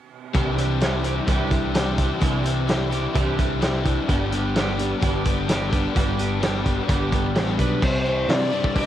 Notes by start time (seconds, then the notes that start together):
0.34 C2 C3 E3 G3 C4 D4 E4 G4, kick, closed hi-hat
0.57 G3 C4 D4 E4 G4, closed hi-hat
0.80 E3 G3 C4 D4 E4 G4, snare, closed hi-hat
1.03 G3 D4 E4 G4, closed hi-hat
1.08 C4
1.27 C2 C3 E3 G3 C4 D4 E4 G4, kick, closed hi-hat
1.50 G3 D4 E4 G4, kick, closed hi-hat
1.55 C4
1.73 E3 G3 C4 D4 E4 G4, snare, closed hi-hat
1.97 E3 G3 D4 E4 G4, kick, closed hi-hat
2.02 C4
2.20 C2 C3 E3 G3 C4 E4 G4, kick, closed hi-hat
2.24 D4
2.43 G3 D4 E4 G4, closed hi-hat
2.48 C4
2.67 E3 G3 C4 D4 E4 G4, snare, closed hi-hat
2.90 G3 D4 E4 G4, closed hi-hat
2.95 C4
3.13 C2 C3 E3 G3 C4 D4 E4 G4, kick, closed hi-hat
3.37 G3 C4 D4 E4 G4, kick, closed hi-hat
3.60 E3 G3 C4 E4 G4, snare, closed hi-hat
3.64 D4
3.84 E3 G3 D4 E4 G4, kick, closed hi-hat
3.89 C4
4.08 G1 G2 D3 G3 B3 D4 G4, kick, closed hi-hat
4.31 G3 B3 D4 G4, closed hi-hat
4.55 G3 B3 D4 G4, snare, closed hi-hat
4.77 G3 B3 D4 G4, closed hi-hat
5.00 G1 G2 D3 G3 B3 D4 G4, kick, closed hi-hat
5.24 G3 B3 D4 G4, kick, closed hi-hat
5.46 G3 B3 D4 G4, snare, closed hi-hat
5.70 G3 B3 D4 G4, kick, closed hi-hat
5.75 B3
5.94 G1 G2 D3 G3 B3 D4 G4, kick, closed hi-hat
6.17 G3 B3 D4 G4, closed hi-hat
6.40 G3 B3 D4 G4, snare, closed hi-hat
6.63 G3 B3 D4 G4, kick, closed hi-hat
6.87 G1 G2 D3 G3 B3 D4 G4, kick, closed hi-hat
7.11 G1 G3 B3 D4 G4, kick, closed hi-hat
7.34 A1 G3 B3 D4 G4, snare, closed hi-hat
7.57 B1 G3 B3 D4 G4 B4, kick, closed hi-hat
7.81 C2 C3 E3 C5 E5 D6, kick, crash
8.05 E3 C4 G4
8.28 C3 E3 D4 D5, snare, open hi-hat
8.51 G3 C4
8.64 kick
8.75 E3 D4 G4 E5, kick, open hi-hat